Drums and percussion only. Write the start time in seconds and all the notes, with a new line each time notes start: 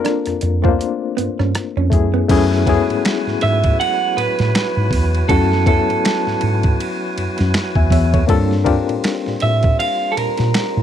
0.05 cross-stick, closed hi-hat
0.26 cross-stick, closed hi-hat
0.41 closed hi-hat
0.65 kick
0.81 closed hi-hat
1.18 closed hi-hat
1.40 cross-stick
1.55 cross-stick, closed hi-hat
1.92 kick, closed hi-hat
2.29 kick, crash, ride
2.52 snare
2.67 kick, ride
2.90 ride
3.05 finger snap, snare, ride
3.27 snare
3.41 ride
3.64 kick, ride
3.81 ride
4.18 ride
4.39 snare, ride
4.55 finger snap, snare, ride
4.91 kick, open hi-hat, ride
5.15 ride
5.29 kick, ride
5.52 snare
5.66 kick, ride
5.90 ride
6.05 finger snap, snare, ride
6.27 snare
6.41 ride
6.63 kick, ride
6.80 ride
7.18 ride
7.38 snare, ride
7.54 finger snap, snare, ride
7.75 kick
7.90 kick, open hi-hat, ride
8.14 kick, ride
8.29 kick, ride
8.51 snare
8.66 kick, ride
8.89 ride
9.04 finger snap, snare, ride
9.26 snare
9.40 ride
9.63 kick, ride
9.80 ride
10.17 ride
10.37 snare, ride
10.54 finger snap, snare, ride